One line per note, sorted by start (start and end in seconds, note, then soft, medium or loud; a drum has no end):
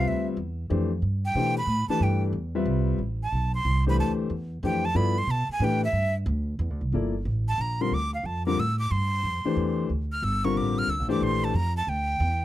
0.00 0.35 G3 medium
0.00 0.35 C4 medium
0.00 0.35 F4 medium
0.00 0.35 B4 medium
0.00 0.35 E5 medium
0.04 0.36 D2 medium
0.04 0.27 E5 medium
0.37 0.69 E2 medium
0.70 1.02 F2 loud
0.70 0.89 E3 medium
0.70 0.89 A3 medium
0.70 0.89 D4 medium
0.70 0.89 G4 medium
0.70 0.89 C5 medium
1.02 1.34 G2 medium
1.25 1.55 G5 medium
1.35 1.66 B2 medium
1.35 1.55 E3 medium
1.35 1.55 A3 medium
1.35 1.55 D4 medium
1.35 1.55 G4 medium
1.35 1.55 C5 medium
1.58 1.88 B5 loud
1.67 1.87 A2 medium
1.88 2.32 E3 medium
1.88 2.32 A3 medium
1.88 2.32 D4 medium
1.88 2.32 G4 medium
1.88 2.32 B4 medium
1.88 2.05 A5 loud
1.88 muted upright bass stroke soft
2.00 2.32 G2 medium
2.00 2.23 G5 medium
2.33 2.65 E2 medium
2.55 2.97 G3 medium
2.55 2.98 C4 medium
2.55 2.98 F4 medium
2.55 2.98 B4 medium
2.55 2.98 E5 medium
2.65 2.98 C2 medium
2.98 3.31 A1 medium
3.23 3.53 A5 medium
3.32 3.64 B1 medium
3.55 3.85 C6 loud
3.65 3.97 C2 loud
3.87 4.29 E3 medium
3.87 4.29 A3 medium
3.87 4.29 D4 medium
3.87 4.29 G4 medium
3.87 4.29 C5 medium
3.87 3.99 B5 medium
3.98 4.29 D2 medium
3.98 4.12 A5 medium
4.30 4.62 E2 medium
4.63 4.94 F2 loud
4.63 4.83 E3 medium
4.63 4.82 A3 medium
4.63 4.83 D4 medium
4.63 4.83 G4 medium
4.63 4.83 C5 medium
4.63 4.87 G5 medium
4.85 4.98 A5 loud
4.95 5.26 G2 medium
4.95 5.14 F3 medium
4.95 5.15 B3 medium
4.95 5.15 E4 medium
4.95 5.15 A4 medium
4.95 5.15 D5 medium
4.95 5.20 B5 medium
5.18 5.32 C6 loud
5.27 5.48 B2 medium
5.27 5.51 A5 medium
5.49 5.66 G#5 medium
5.49 muted upright bass stroke soft
5.60 5.92 A2 medium
5.60 5.81 E3 medium
5.60 5.81 A3 medium
5.60 5.81 D4 medium
5.60 5.81 G4 medium
5.60 5.81 B4 medium
5.64 5.84 G5 medium
5.85 6.14 E5 loud
5.93 6.25 G2 medium
6.26 6.58 D2 loud
6.59 6.70 E2 loud
6.70 6.80 D2 medium
6.81 6.92 C2 medium
6.92 7.25 G1 medium
6.92 7.12 F3 medium
6.92 7.13 A#3 medium
6.92 7.13 E4 medium
6.92 7.13 A4 medium
6.92 7.13 D5 medium
7.25 7.57 A1 medium
7.48 7.63 A5 loud
7.58 7.90 A#1 medium
7.58 7.83 A#5 medium
7.81 7.91 D3 medium
7.81 7.91 G3 medium
7.81 7.91 C4 medium
7.81 7.91 F4 medium
7.81 7.91 A#4 medium
7.81 7.95 C6 loud
7.91 8.23 D2 medium
7.91 8.14 D6 loud
8.14 8.27 F5 soft
8.23 8.56 F2 medium
8.23 8.46 A5 medium
8.46 8.57 D3 medium
8.46 8.57 G3 medium
8.46 8.57 C4 medium
8.46 8.57 F4 medium
8.46 8.57 A#4 medium
8.46 8.61 D6 loud
8.57 8.89 A2 medium
8.57 8.78 E6 medium
8.79 8.93 D6 loud
8.91 9.23 G2 medium
8.91 9.90 C6 medium
9.23 9.43 F2 medium
9.44 9.87 E3 medium
9.44 9.87 A3 medium
9.44 9.87 D4 medium
9.44 9.88 G4 medium
9.44 9.88 C5 medium
9.44 muted upright bass stroke soft
9.56 9.88 E2 medium
9.90 10.21 D2 medium
10.12 10.25 F6 medium
10.22 10.54 G1 medium
10.22 10.46 E6 loud
10.44 10.86 D3 medium
10.44 10.86 G3 medium
10.44 10.86 C4 medium
10.44 10.86 F4 medium
10.44 10.86 A#4 medium
10.44 10.59 C#6 medium
10.56 10.87 A1 medium
10.56 10.80 D6 medium
10.78 10.91 F6 loud
10.87 10.99 D2 medium
10.87 11.10 E6 loud
10.99 11.09 A#1 medium
11.08 11.20 G1 medium
11.08 11.51 E3 medium
11.08 11.51 A3 medium
11.08 11.51 D4 medium
11.08 11.51 G4 medium
11.08 11.52 C5 medium
11.08 11.25 D6 medium
11.21 11.53 A#1 medium
11.21 11.46 C6 medium
11.44 11.57 A5 medium
11.54 11.86 F2 medium
11.54 11.76 A#5 loud
11.77 11.90 A5 medium
11.87 12.19 D2 medium
11.87 12.45 G5 loud
12.20 12.45 E2 loud